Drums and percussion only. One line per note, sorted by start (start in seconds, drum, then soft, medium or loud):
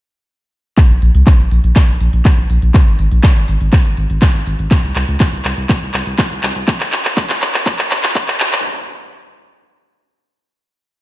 0.78 kick loud
0.78 clap soft
0.78 closed hi-hat medium
1.02 open hi-hat loud
1.15 closed hi-hat medium
1.27 kick loud
1.27 clap soft
1.27 closed hi-hat medium
1.39 open hi-hat medium
1.51 open hi-hat loud
1.64 closed hi-hat medium
1.76 kick loud
1.76 clap medium
1.76 closed hi-hat medium
1.89 closed hi-hat soft
2.01 open hi-hat loud
2.13 closed hi-hat medium
2.25 kick loud
2.25 clap medium
2.25 closed hi-hat medium
2.38 closed hi-hat soft
2.50 open hi-hat loud
2.62 closed hi-hat soft
2.74 kick loud
2.74 clap medium
2.74 closed hi-hat medium
2.99 open hi-hat loud
3.12 closed hi-hat medium
3.24 kick loud
3.24 clap medium
3.24 closed hi-hat medium
3.36 closed hi-hat soft
3.48 open hi-hat loud
3.61 closed hi-hat medium
3.73 kick loud
3.73 clap medium
3.73 closed hi-hat medium
3.85 closed hi-hat soft
3.97 open hi-hat loud
4.10 closed hi-hat medium
4.22 kick loud
4.22 clap medium
4.22 closed hi-hat medium
4.34 closed hi-hat soft
4.47 open hi-hat loud
4.59 closed hi-hat medium
4.71 kick loud
4.71 clap medium
4.71 closed hi-hat medium
4.96 clap medium
4.96 open hi-hat loud
5.08 closed hi-hat medium
5.20 kick loud
5.20 clap medium
5.20 closed hi-hat medium
5.33 open hi-hat medium
5.45 clap medium
5.45 open hi-hat loud
5.57 closed hi-hat soft
5.69 kick loud
5.69 clap medium
5.69 closed hi-hat medium
5.82 closed hi-hat soft
5.94 clap medium
5.94 open hi-hat loud
6.07 closed hi-hat medium
6.19 kick loud
6.19 clap medium
6.19 closed hi-hat medium
6.31 closed hi-hat soft
6.43 clap medium
6.43 open hi-hat loud
6.56 closed hi-hat soft
6.68 kick loud
6.68 clap medium
6.68 closed hi-hat medium
6.80 clap medium
6.92 clap medium
6.92 open hi-hat loud
7.05 clap medium
7.05 closed hi-hat medium
7.17 kick loud
7.17 clap loud
7.17 closed hi-hat medium
7.30 clap medium
7.30 closed hi-hat soft
7.42 clap loud
7.42 open hi-hat loud
7.54 clap medium
7.54 closed hi-hat soft
7.66 kick loud
7.66 clap loud
7.66 closed hi-hat medium
7.79 clap medium
7.79 closed hi-hat soft
7.91 clap loud
7.91 open hi-hat loud
8.03 clap medium
8.03 closed hi-hat soft
8.15 kick loud
8.15 clap loud
8.15 closed hi-hat medium
8.28 clap medium
8.28 closed hi-hat soft
8.40 clap loud
8.40 open hi-hat loud
8.53 clap loud
8.53 closed hi-hat medium